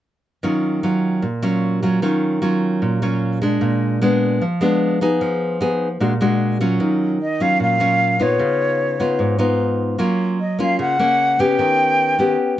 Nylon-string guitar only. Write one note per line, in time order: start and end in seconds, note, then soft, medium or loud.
0.43 1.21 D#3 medium
0.43 0.80 F#3 medium
0.43 0.80 C#4 medium
0.43 0.80 F4 medium
0.83 1.23 F#3 medium
0.83 1.23 C#4 medium
0.83 1.23 F4 medium
1.22 2.00 A#2 medium
1.43 1.79 F#3 medium
1.43 1.79 C#4 medium
1.43 1.80 F4 medium
1.83 1.99 F#3 medium
1.83 2.00 C#4 medium
1.83 2.00 F4 medium
2.02 2.80 D#3 medium
2.02 2.39 F#3 soft
2.02 2.39 C#4 soft
2.02 2.39 F4 medium
2.42 2.99 F#3 medium
2.42 2.99 C#4 soft
2.42 2.99 F4 medium
2.82 3.60 A#2 medium
3.02 3.39 F#3 medium
3.02 3.39 C#4 medium
3.02 3.39 F4 medium
3.42 3.98 G#3 medium
3.42 3.99 D4 medium
3.61 4.39 A#2 medium
4.02 4.41 G#3 medium
4.02 4.41 B3 medium
4.02 4.42 D4 medium
4.42 5.19 F3 medium
4.61 4.98 G#3 medium
4.61 4.98 B3 medium
4.61 4.98 D4 medium
5.01 5.58 B3 medium
5.01 5.58 D#4 medium
5.01 5.58 G#4 medium
5.21 5.99 F3 medium
5.61 5.88 B3 medium
5.61 5.88 D#4 medium
5.61 5.88 G#4 medium
6.00 6.78 A#2 medium
6.00 6.12 G#3 soft
6.00 6.12 D4 soft
6.00 6.13 F#4 soft
6.21 6.57 G#3 medium
6.21 6.57 D4 medium
6.21 6.58 F#4 medium
6.61 7.17 F#3 medium
6.61 7.17 C#4 medium
6.61 7.17 F4 medium
6.80 7.58 D#3 medium
7.40 7.77 F#3 soft
7.40 7.77 C#4 medium
7.40 7.77 F4 medium
7.60 8.37 A#2 medium
7.80 8.17 F#3 medium
7.80 8.17 C#4 medium
7.80 8.17 F4 medium
8.20 8.96 B3 medium
8.20 8.96 D#4 medium
8.20 8.97 F4 medium
8.39 9.17 C#3 medium
9.00 9.36 B3 medium
9.00 9.36 D#4 medium
9.00 9.36 F4 medium
9.19 9.97 G#2 medium
9.38 9.95 B3 medium
9.38 9.96 D#4 medium
9.38 9.96 F4 medium
9.98 10.76 F#3 medium
9.98 10.38 A#3 medium
9.98 10.39 C#4 soft
9.98 10.39 F4 medium
10.59 10.95 A#3 soft
10.59 10.95 C#4 soft
10.59 10.96 F4 medium
10.79 11.56 C#3 medium
10.99 11.36 A#3 medium
10.99 11.36 C#4 medium
11.39 12.15 B3 medium
11.39 12.15 C#4 medium
11.39 12.16 G4 medium
11.59 12.36 D#3 medium
12.19 12.55 B3 medium
12.19 12.55 C#4 soft
12.19 12.55 G4 medium